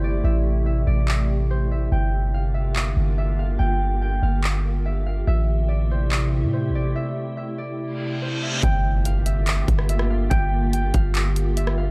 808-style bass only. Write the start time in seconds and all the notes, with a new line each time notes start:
Already playing: G1
0.24 A1
0.87 A1
1.92 G1
2.97 G1
3.60 G1
4.23 G1
5.27 A1
6.43 A2
6.69 A1
8.63 G1
9.68 G1
10.31 G1
10.94 G1